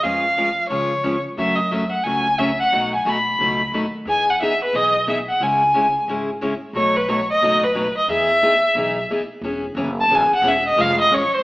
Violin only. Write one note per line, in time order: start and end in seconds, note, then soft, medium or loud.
0.03 0.68 F5 medium
0.69 1.20 C#5 medium
1.39 1.57 E5 medium
1.55 1.72 D#5 medium
1.71 1.91 E5 medium
1.92 2.05 F#5 medium
2.03 2.40 G#5 medium
2.38 2.59 E5 medium
2.60 2.91 F#5 medium
2.95 3.10 G#5 medium
3.08 3.74 B5 medium
4.10 4.32 G#5 medium
4.30 4.41 F#5 medium
4.42 4.60 E5 medium
4.64 4.77 B4 medium
4.76 5.08 D#5 medium
5.09 5.18 E5 medium
5.29 5.45 F#5 medium
5.43 6.09 G#5 medium
6.76 6.98 C#5 medium
6.97 7.10 B4 medium
7.09 7.29 C#5 medium
7.30 7.65 D#5 medium
7.63 7.97 B4 medium
7.97 8.09 D#5 medium
8.11 9.07 E5 loud
10.01 10.16 A5 medium
10.14 10.33 G#5 medium
10.35 10.50 F#5 medium
10.48 10.67 E5 medium
10.68 10.82 D#5 medium
10.81 11.00 F5 loud
11.01 11.16 D#5 medium
11.14 11.35 C#5 medium
11.34 11.43 C5 medium